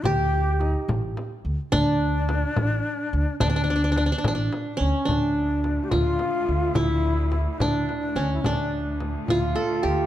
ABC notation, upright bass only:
X:1
M:6/8
L:1/16
Q:3/8=72
K:none
V:1 name="Upright bass" clef=bass
D,,6 A,,,2 z2 D,, z | D,,6 A,,,2 z2 D,, z | D,,6 A,,,2 z2 D,, z | D,,6 D,,2 z2 D,,2 |
D,,6 D,,2 z2 D,,2 | D,,6 D,,2 z2 D,,2 |]